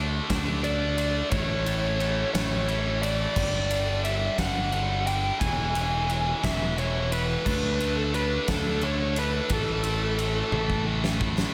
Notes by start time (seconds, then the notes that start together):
Already playing: D2 D3 A3 D4
0.30 D2 D3 A3 D4, kick, snare, ride
0.62 D3 A3 D4 D5, ride
0.98 D3 A3 D4, ride
1.30 A1 A2 E3 A3 C#5, kick, ride
1.66 A2 E3 A3, ride
2.00 A2 E3 A3, ride
2.34 A1 A2 E3 A3 C#5, snare, ride
2.68 A2 E3 A3, ride
3.02 A2 E3 A3 D5, ride
3.36 G1 G2 D3 G3, kick, crash
3.71 G2 D3 G3, ride
4.04 G2 D3 G3 E5, ride
4.38 G1 G2 D3 G3 F#5, kick, snare, ride
4.72 G2 D3 G3, ride
5.07 G2 D3 G3 G5, ride
5.40 E1 E2 B2 E3 G#5, kick, ride
5.74 E2 B2 E3, ride
6.08 E2 B2 E3, ride
6.42 E1 E2 B2 E3 E5, kick, snare, ride
6.76 E2 B2 E3 C#5, ride
7.11 E2 B2 E3 B4, ride
7.45 D2 D3 A3 D4, kick, crash
7.79 D3 A3 D4, ride
7.98 A4
8.14 D3 A3 D4 B4, ride
8.47 D2 D3 A3 D4 A4, kick, snare, ride
8.81 D3 A3 D4 C#5, ride
9.16 D3 A3 D4 B4, ride
9.50 A1 A2 E3 A3 A4, kick, ride
9.84 A2 E3 A3, ride
10.18 A2 E3 A3, ride
10.51 A1 A2 E3 A3, high tom
10.70 kick
10.86 A2 E3 A3
11.04 snare
11.21 A2 E3 A3, kick
11.38 snare